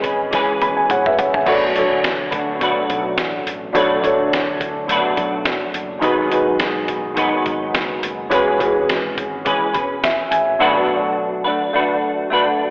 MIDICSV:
0, 0, Header, 1, 5, 480
1, 0, Start_track
1, 0, Tempo, 570885
1, 1230, Time_signature, 4, 2, 24, 8
1, 10681, End_track
2, 0, Start_track
2, 0, Title_t, "Upright piano"
2, 0, Program_c, 0, 0
2, 0, Control_c, 0, 64, 127
2, 0, Note_on_c, 0, 61, 67
2, 0, Note_on_c, 0, 66, 65
2, 0, Note_on_c, 0, 68, 63
2, 0, Note_on_c, 0, 71, 68
2, 268, Note_off_c, 0, 61, 0
2, 271, Note_off_c, 0, 66, 0
2, 275, Note_off_c, 0, 68, 0
2, 279, Note_off_c, 0, 71, 0
2, 520, Note_on_c, 0, 83, 62
2, 639, Note_off_c, 0, 83, 0
2, 644, Note_on_c, 0, 80, 63
2, 744, Note_off_c, 0, 80, 0
2, 762, Note_on_c, 0, 73, 57
2, 762, Note_on_c, 0, 78, 65
2, 767, Note_on_c, 0, 68, 46
2, 879, Note_off_c, 0, 78, 0
2, 882, Note_off_c, 0, 73, 0
2, 885, Note_off_c, 0, 68, 0
2, 890, Note_on_c, 0, 76, 67
2, 895, Note_on_c, 0, 71, 51
2, 992, Note_off_c, 0, 71, 0
2, 1000, Note_on_c, 0, 78, 62
2, 1005, Note_on_c, 0, 73, 50
2, 1117, Note_off_c, 0, 73, 0
2, 1121, Note_off_c, 0, 78, 0
2, 1127, Note_on_c, 0, 80, 54
2, 1130, Note_on_c, 0, 73, 44
2, 1211, Note_off_c, 0, 76, 0
2, 1228, Note_on_c, 0, 62, 72
2, 1239, Note_on_c, 0, 66, 64
2, 1240, Note_off_c, 0, 73, 0
2, 1242, Control_c, 0, 64, 0
2, 1242, Note_on_c, 0, 69, 64
2, 1253, Note_on_c, 0, 73, 85
2, 1353, Note_off_c, 0, 80, 0
2, 1378, Control_c, 0, 64, 127
2, 1415, Note_off_c, 0, 62, 0
2, 1421, Note_off_c, 0, 66, 0
2, 1422, Note_off_c, 0, 69, 0
2, 1428, Note_off_c, 0, 73, 0
2, 1473, Note_on_c, 0, 62, 65
2, 1479, Note_on_c, 0, 66, 63
2, 1484, Note_on_c, 0, 69, 63
2, 1492, Note_on_c, 0, 73, 72
2, 2191, Note_off_c, 0, 62, 0
2, 2194, Note_off_c, 0, 66, 0
2, 2197, Note_off_c, 0, 69, 0
2, 2201, Note_off_c, 0, 73, 0
2, 3137, Note_on_c, 0, 62, 74
2, 3144, Note_on_c, 0, 66, 68
2, 3152, Note_on_c, 0, 69, 69
2, 3157, Note_on_c, 0, 73, 86
2, 3329, Note_off_c, 0, 62, 0
2, 3332, Note_off_c, 0, 66, 0
2, 3336, Note_off_c, 0, 69, 0
2, 3339, Note_off_c, 0, 73, 0
2, 3378, Note_on_c, 0, 62, 72
2, 3389, Note_on_c, 0, 66, 59
2, 3393, Note_on_c, 0, 69, 66
2, 3402, Note_on_c, 0, 73, 74
2, 4103, Note_off_c, 0, 62, 0
2, 4108, Note_off_c, 0, 66, 0
2, 4111, Note_off_c, 0, 69, 0
2, 4115, Note_off_c, 0, 73, 0
2, 5057, Note_on_c, 0, 63, 81
2, 5068, Note_on_c, 0, 66, 66
2, 5070, Note_on_c, 0, 68, 67
2, 5076, Note_on_c, 0, 71, 84
2, 5078, Control_c, 0, 64, 0
2, 5202, Control_c, 0, 64, 127
2, 5248, Note_off_c, 0, 63, 0
2, 5254, Note_off_c, 0, 66, 0
2, 5255, Note_off_c, 0, 68, 0
2, 5258, Note_off_c, 0, 71, 0
2, 5296, Note_on_c, 0, 63, 70
2, 5302, Note_on_c, 0, 66, 63
2, 5311, Note_on_c, 0, 68, 65
2, 5316, Note_on_c, 0, 71, 77
2, 6022, Note_off_c, 0, 63, 0
2, 6025, Note_off_c, 0, 66, 0
2, 6030, Note_off_c, 0, 68, 0
2, 6032, Note_off_c, 0, 71, 0
2, 6979, Note_on_c, 0, 61, 73
2, 6988, Note_on_c, 0, 66, 65
2, 6995, Note_on_c, 0, 68, 69
2, 7000, Control_c, 0, 64, 0
2, 7004, Note_on_c, 0, 71, 81
2, 7168, Control_c, 0, 64, 127
2, 7170, Note_off_c, 0, 61, 0
2, 7174, Note_off_c, 0, 66, 0
2, 7178, Note_off_c, 0, 68, 0
2, 7182, Note_off_c, 0, 71, 0
2, 7218, Note_on_c, 0, 61, 68
2, 7224, Note_on_c, 0, 66, 63
2, 7229, Note_on_c, 0, 68, 64
2, 7236, Note_on_c, 0, 71, 69
2, 7944, Note_off_c, 0, 61, 0
2, 7947, Note_off_c, 0, 66, 0
2, 7949, Note_off_c, 0, 68, 0
2, 7953, Note_off_c, 0, 71, 0
2, 8438, Note_on_c, 0, 76, 64
2, 8657, Note_off_c, 0, 76, 0
2, 8670, Note_on_c, 0, 80, 56
2, 8893, Note_off_c, 0, 80, 0
2, 8920, Control_c, 0, 64, 0
2, 9087, Control_c, 0, 64, 127
2, 10681, End_track
3, 0, Start_track
3, 0, Title_t, "Clean electric guitar"
3, 0, Program_c, 1, 27
3, 20, Note_on_c, 1, 71, 46
3, 32, Note_on_c, 1, 68, 43
3, 43, Note_on_c, 1, 61, 38
3, 259, Note_on_c, 1, 52, 74
3, 266, Note_off_c, 1, 71, 0
3, 272, Note_off_c, 1, 68, 0
3, 272, Note_on_c, 1, 56, 75
3, 274, Note_off_c, 1, 61, 0
3, 284, Note_on_c, 1, 61, 74
3, 286, Note_on_c, 1, 68, 75
3, 296, Note_on_c, 1, 71, 77
3, 1217, Note_on_c, 1, 47, 70
3, 1219, Note_off_c, 1, 52, 0
3, 1223, Note_off_c, 1, 56, 0
3, 1223, Note_on_c, 1, 54, 75
3, 1226, Note_on_c, 1, 57, 79
3, 1228, Note_off_c, 1, 61, 0
3, 1231, Note_on_c, 1, 62, 79
3, 1234, Note_off_c, 1, 68, 0
3, 1234, Note_off_c, 1, 71, 0
3, 1237, Note_on_c, 1, 66, 78
3, 1237, Note_on_c, 1, 71, 86
3, 1936, Note_off_c, 1, 71, 0
3, 1940, Note_on_c, 1, 71, 48
3, 1943, Note_off_c, 1, 47, 0
3, 1946, Note_off_c, 1, 66, 0
3, 1948, Note_off_c, 1, 57, 0
3, 1950, Note_off_c, 1, 62, 0
3, 1950, Note_on_c, 1, 66, 44
3, 1959, Note_on_c, 1, 62, 42
3, 1962, Note_on_c, 1, 57, 43
3, 2176, Note_on_c, 1, 47, 72
3, 2182, Note_off_c, 1, 54, 0
3, 2184, Note_off_c, 1, 71, 0
3, 2185, Note_off_c, 1, 57, 0
3, 2185, Note_on_c, 1, 54, 69
3, 2189, Note_off_c, 1, 66, 0
3, 2194, Note_off_c, 1, 62, 0
3, 2195, Note_on_c, 1, 57, 75
3, 2202, Note_on_c, 1, 62, 72
3, 2210, Note_on_c, 1, 66, 85
3, 2212, Note_on_c, 1, 71, 83
3, 3124, Note_off_c, 1, 47, 0
3, 3134, Note_on_c, 1, 47, 80
3, 3142, Note_off_c, 1, 57, 0
3, 3145, Note_off_c, 1, 54, 0
3, 3146, Note_off_c, 1, 62, 0
3, 3148, Note_on_c, 1, 54, 75
3, 3152, Note_on_c, 1, 57, 85
3, 3156, Note_on_c, 1, 62, 83
3, 3165, Note_off_c, 1, 66, 0
3, 3165, Note_off_c, 1, 71, 0
3, 3168, Note_on_c, 1, 66, 90
3, 3168, Note_on_c, 1, 71, 86
3, 4086, Note_off_c, 1, 47, 0
3, 4096, Note_on_c, 1, 47, 73
3, 4100, Note_off_c, 1, 57, 0
3, 4102, Note_off_c, 1, 54, 0
3, 4105, Note_on_c, 1, 54, 77
3, 4108, Note_off_c, 1, 62, 0
3, 4110, Note_on_c, 1, 57, 73
3, 4118, Note_on_c, 1, 62, 79
3, 4125, Note_off_c, 1, 66, 0
3, 4128, Note_on_c, 1, 66, 84
3, 4132, Note_off_c, 1, 71, 0
3, 4135, Note_on_c, 1, 71, 83
3, 5036, Note_off_c, 1, 47, 0
3, 5039, Note_on_c, 1, 44, 83
3, 5049, Note_off_c, 1, 54, 0
3, 5052, Note_on_c, 1, 51, 77
3, 5055, Note_off_c, 1, 57, 0
3, 5058, Note_on_c, 1, 54, 81
3, 5063, Note_off_c, 1, 62, 0
3, 5066, Note_off_c, 1, 66, 0
3, 5066, Note_on_c, 1, 59, 75
3, 5070, Note_on_c, 1, 63, 75
3, 5074, Note_off_c, 1, 71, 0
3, 5078, Note_on_c, 1, 71, 89
3, 5996, Note_off_c, 1, 44, 0
3, 6006, Note_on_c, 1, 44, 78
3, 6009, Note_off_c, 1, 51, 0
3, 6014, Note_off_c, 1, 54, 0
3, 6019, Note_on_c, 1, 51, 80
3, 6024, Note_on_c, 1, 54, 65
3, 6029, Note_off_c, 1, 63, 0
3, 6031, Note_off_c, 1, 59, 0
3, 6034, Note_on_c, 1, 59, 87
3, 6041, Note_off_c, 1, 71, 0
3, 6041, Note_on_c, 1, 63, 78
3, 6045, Note_on_c, 1, 71, 79
3, 6972, Note_off_c, 1, 51, 0
3, 6976, Note_on_c, 1, 52, 80
3, 6977, Note_off_c, 1, 44, 0
3, 6980, Note_off_c, 1, 54, 0
3, 6984, Note_on_c, 1, 56, 81
3, 6987, Note_off_c, 1, 59, 0
3, 6990, Note_on_c, 1, 61, 84
3, 6993, Note_off_c, 1, 63, 0
3, 6996, Note_on_c, 1, 68, 84
3, 7007, Note_off_c, 1, 71, 0
3, 7011, Note_on_c, 1, 71, 92
3, 7935, Note_off_c, 1, 52, 0
3, 7938, Note_off_c, 1, 56, 0
3, 7943, Note_off_c, 1, 61, 0
3, 7945, Note_on_c, 1, 52, 71
3, 7948, Note_off_c, 1, 68, 0
3, 7948, Note_on_c, 1, 56, 74
3, 7953, Note_on_c, 1, 61, 70
3, 7958, Note_on_c, 1, 68, 80
3, 7959, Note_off_c, 1, 71, 0
3, 7962, Note_on_c, 1, 71, 77
3, 8174, Note_off_c, 1, 71, 0
3, 8184, Note_on_c, 1, 71, 49
3, 8187, Note_off_c, 1, 52, 0
3, 8188, Note_off_c, 1, 56, 0
3, 8188, Note_off_c, 1, 68, 0
3, 8191, Note_off_c, 1, 61, 0
3, 8198, Note_on_c, 1, 68, 45
3, 8212, Note_on_c, 1, 61, 39
3, 8903, Note_on_c, 1, 47, 85
3, 8910, Note_off_c, 1, 61, 0
3, 8910, Note_on_c, 1, 54, 88
3, 8912, Note_off_c, 1, 68, 0
3, 8913, Note_on_c, 1, 57, 84
3, 8914, Note_on_c, 1, 62, 90
3, 8915, Note_on_c, 1, 66, 100
3, 8920, Note_off_c, 1, 71, 0
3, 8924, Note_on_c, 1, 71, 100
3, 9619, Note_off_c, 1, 71, 0
3, 9622, Note_on_c, 1, 71, 52
3, 9626, Note_off_c, 1, 47, 0
3, 9627, Note_off_c, 1, 66, 0
3, 9631, Note_off_c, 1, 57, 0
3, 9631, Note_off_c, 1, 62, 0
3, 9631, Note_on_c, 1, 66, 55
3, 9641, Note_on_c, 1, 62, 49
3, 9646, Note_on_c, 1, 57, 44
3, 9855, Note_off_c, 1, 57, 0
3, 9862, Note_off_c, 1, 62, 0
3, 9865, Note_off_c, 1, 71, 0
3, 9865, Note_on_c, 1, 57, 63
3, 9870, Note_off_c, 1, 66, 0
3, 9872, Note_on_c, 1, 62, 64
3, 9884, Note_on_c, 1, 66, 74
3, 9885, Note_on_c, 1, 71, 68
3, 10334, Note_off_c, 1, 57, 0
3, 10344, Note_on_c, 1, 57, 67
3, 10347, Note_off_c, 1, 62, 0
3, 10357, Note_on_c, 1, 62, 63
3, 10361, Note_off_c, 1, 66, 0
3, 10364, Note_on_c, 1, 66, 77
3, 10366, Note_off_c, 1, 71, 0
3, 10369, Note_on_c, 1, 71, 75
3, 10681, Note_off_c, 1, 54, 0
3, 10681, Note_off_c, 1, 57, 0
3, 10681, Note_off_c, 1, 62, 0
3, 10681, Note_off_c, 1, 66, 0
3, 10681, Note_off_c, 1, 71, 0
3, 10681, End_track
4, 0, Start_track
4, 0, Title_t, "Fretless electric bass"
4, 0, Program_c, 2, 35
4, 0, Note_on_c, 2, 32, 82
4, 372, Note_off_c, 2, 32, 0
4, 517, Note_on_c, 2, 28, 84
4, 898, Note_off_c, 2, 28, 0
4, 1000, Note_on_c, 2, 33, 77
4, 1188, Note_off_c, 2, 33, 0
4, 1234, Note_on_c, 2, 35, 88
4, 1530, Note_off_c, 2, 35, 0
4, 1605, Note_on_c, 2, 38, 72
4, 2289, Note_off_c, 2, 38, 0
4, 2439, Note_on_c, 2, 35, 89
4, 2678, Note_off_c, 2, 35, 0
4, 2678, Note_on_c, 2, 33, 74
4, 2866, Note_off_c, 2, 33, 0
4, 2914, Note_on_c, 2, 33, 76
4, 3104, Note_off_c, 2, 33, 0
4, 3152, Note_on_c, 2, 35, 88
4, 3448, Note_off_c, 2, 35, 0
4, 3519, Note_on_c, 2, 38, 82
4, 4205, Note_off_c, 2, 38, 0
4, 4354, Note_on_c, 2, 35, 81
4, 4736, Note_off_c, 2, 35, 0
4, 4831, Note_on_c, 2, 30, 81
4, 5022, Note_off_c, 2, 30, 0
4, 5062, Note_on_c, 2, 32, 91
4, 5362, Note_off_c, 2, 32, 0
4, 5439, Note_on_c, 2, 35, 80
4, 6126, Note_off_c, 2, 35, 0
4, 6278, Note_on_c, 2, 32, 78
4, 6466, Note_off_c, 2, 32, 0
4, 6513, Note_on_c, 2, 30, 80
4, 6703, Note_off_c, 2, 30, 0
4, 6762, Note_on_c, 2, 30, 80
4, 6996, Note_off_c, 2, 30, 0
4, 6996, Note_on_c, 2, 28, 87
4, 7291, Note_off_c, 2, 28, 0
4, 7368, Note_on_c, 2, 32, 86
4, 8051, Note_off_c, 2, 32, 0
4, 8199, Note_on_c, 2, 28, 78
4, 8579, Note_off_c, 2, 28, 0
4, 8672, Note_on_c, 2, 33, 78
4, 8863, Note_off_c, 2, 33, 0
4, 10681, End_track
5, 0, Start_track
5, 0, Title_t, "Drums"
5, 31, Note_on_c, 9, 42, 70
5, 36, Note_on_c, 9, 36, 82
5, 115, Note_off_c, 9, 42, 0
5, 120, Note_off_c, 9, 36, 0
5, 275, Note_on_c, 9, 42, 72
5, 277, Note_on_c, 9, 36, 81
5, 280, Note_on_c, 9, 38, 47
5, 359, Note_off_c, 9, 42, 0
5, 361, Note_off_c, 9, 36, 0
5, 364, Note_off_c, 9, 38, 0
5, 517, Note_on_c, 9, 42, 57
5, 518, Note_on_c, 9, 48, 61
5, 601, Note_off_c, 9, 42, 0
5, 602, Note_off_c, 9, 48, 0
5, 755, Note_on_c, 9, 42, 75
5, 755, Note_on_c, 9, 47, 69
5, 839, Note_off_c, 9, 42, 0
5, 839, Note_off_c, 9, 47, 0
5, 892, Note_on_c, 9, 45, 70
5, 976, Note_off_c, 9, 45, 0
5, 997, Note_on_c, 9, 42, 73
5, 997, Note_on_c, 9, 43, 78
5, 1081, Note_off_c, 9, 42, 0
5, 1081, Note_off_c, 9, 43, 0
5, 1128, Note_on_c, 9, 43, 72
5, 1212, Note_off_c, 9, 43, 0
5, 1231, Note_on_c, 9, 49, 73
5, 1232, Note_on_c, 9, 36, 96
5, 1315, Note_off_c, 9, 49, 0
5, 1316, Note_off_c, 9, 36, 0
5, 1477, Note_on_c, 9, 42, 63
5, 1561, Note_off_c, 9, 42, 0
5, 1717, Note_on_c, 9, 42, 77
5, 1718, Note_on_c, 9, 38, 102
5, 1801, Note_off_c, 9, 42, 0
5, 1802, Note_off_c, 9, 38, 0
5, 1953, Note_on_c, 9, 42, 73
5, 1958, Note_on_c, 9, 36, 83
5, 2037, Note_off_c, 9, 42, 0
5, 2042, Note_off_c, 9, 36, 0
5, 2196, Note_on_c, 9, 36, 76
5, 2196, Note_on_c, 9, 42, 69
5, 2281, Note_off_c, 9, 36, 0
5, 2281, Note_off_c, 9, 42, 0
5, 2436, Note_on_c, 9, 42, 55
5, 2438, Note_on_c, 9, 36, 73
5, 2520, Note_off_c, 9, 42, 0
5, 2522, Note_off_c, 9, 36, 0
5, 2671, Note_on_c, 9, 38, 91
5, 2671, Note_on_c, 9, 42, 82
5, 2755, Note_off_c, 9, 38, 0
5, 2755, Note_off_c, 9, 42, 0
5, 2917, Note_on_c, 9, 42, 73
5, 3001, Note_off_c, 9, 42, 0
5, 3152, Note_on_c, 9, 36, 102
5, 3156, Note_on_c, 9, 42, 89
5, 3236, Note_off_c, 9, 36, 0
5, 3240, Note_off_c, 9, 42, 0
5, 3395, Note_on_c, 9, 36, 79
5, 3400, Note_on_c, 9, 42, 67
5, 3479, Note_off_c, 9, 36, 0
5, 3484, Note_off_c, 9, 42, 0
5, 3643, Note_on_c, 9, 42, 80
5, 3644, Note_on_c, 9, 38, 95
5, 3727, Note_off_c, 9, 42, 0
5, 3728, Note_off_c, 9, 38, 0
5, 3874, Note_on_c, 9, 42, 71
5, 3875, Note_on_c, 9, 36, 77
5, 3958, Note_off_c, 9, 42, 0
5, 3959, Note_off_c, 9, 36, 0
5, 4114, Note_on_c, 9, 42, 75
5, 4198, Note_off_c, 9, 42, 0
5, 4350, Note_on_c, 9, 42, 58
5, 4354, Note_on_c, 9, 36, 76
5, 4434, Note_off_c, 9, 42, 0
5, 4438, Note_off_c, 9, 36, 0
5, 4586, Note_on_c, 9, 38, 93
5, 4586, Note_on_c, 9, 42, 78
5, 4670, Note_off_c, 9, 38, 0
5, 4670, Note_off_c, 9, 42, 0
5, 4828, Note_on_c, 9, 42, 68
5, 4912, Note_off_c, 9, 42, 0
5, 5064, Note_on_c, 9, 36, 105
5, 5065, Note_on_c, 9, 42, 95
5, 5149, Note_off_c, 9, 36, 0
5, 5149, Note_off_c, 9, 42, 0
5, 5310, Note_on_c, 9, 42, 71
5, 5394, Note_off_c, 9, 42, 0
5, 5545, Note_on_c, 9, 42, 86
5, 5546, Note_on_c, 9, 38, 110
5, 5629, Note_off_c, 9, 42, 0
5, 5631, Note_off_c, 9, 38, 0
5, 5787, Note_on_c, 9, 42, 75
5, 5792, Note_on_c, 9, 36, 77
5, 5871, Note_off_c, 9, 42, 0
5, 5876, Note_off_c, 9, 36, 0
5, 6027, Note_on_c, 9, 42, 78
5, 6032, Note_on_c, 9, 36, 86
5, 6111, Note_off_c, 9, 42, 0
5, 6116, Note_off_c, 9, 36, 0
5, 6271, Note_on_c, 9, 42, 61
5, 6274, Note_on_c, 9, 36, 74
5, 6355, Note_off_c, 9, 42, 0
5, 6358, Note_off_c, 9, 36, 0
5, 6512, Note_on_c, 9, 42, 77
5, 6513, Note_on_c, 9, 38, 88
5, 6596, Note_off_c, 9, 42, 0
5, 6597, Note_off_c, 9, 38, 0
5, 6752, Note_on_c, 9, 42, 74
5, 6836, Note_off_c, 9, 42, 0
5, 6990, Note_on_c, 9, 36, 95
5, 6992, Note_on_c, 9, 42, 94
5, 7074, Note_off_c, 9, 36, 0
5, 7076, Note_off_c, 9, 42, 0
5, 7234, Note_on_c, 9, 36, 74
5, 7237, Note_on_c, 9, 42, 66
5, 7318, Note_off_c, 9, 36, 0
5, 7321, Note_off_c, 9, 42, 0
5, 7478, Note_on_c, 9, 42, 80
5, 7479, Note_on_c, 9, 38, 103
5, 7562, Note_off_c, 9, 42, 0
5, 7563, Note_off_c, 9, 38, 0
5, 7716, Note_on_c, 9, 42, 73
5, 7718, Note_on_c, 9, 36, 77
5, 7800, Note_off_c, 9, 42, 0
5, 7802, Note_off_c, 9, 36, 0
5, 7953, Note_on_c, 9, 42, 78
5, 7957, Note_on_c, 9, 36, 82
5, 8037, Note_off_c, 9, 42, 0
5, 8041, Note_off_c, 9, 36, 0
5, 8193, Note_on_c, 9, 42, 55
5, 8199, Note_on_c, 9, 36, 81
5, 8277, Note_off_c, 9, 42, 0
5, 8283, Note_off_c, 9, 36, 0
5, 8438, Note_on_c, 9, 42, 85
5, 8439, Note_on_c, 9, 38, 92
5, 8522, Note_off_c, 9, 42, 0
5, 8523, Note_off_c, 9, 38, 0
5, 8674, Note_on_c, 9, 42, 78
5, 8759, Note_off_c, 9, 42, 0
5, 10681, End_track
0, 0, End_of_file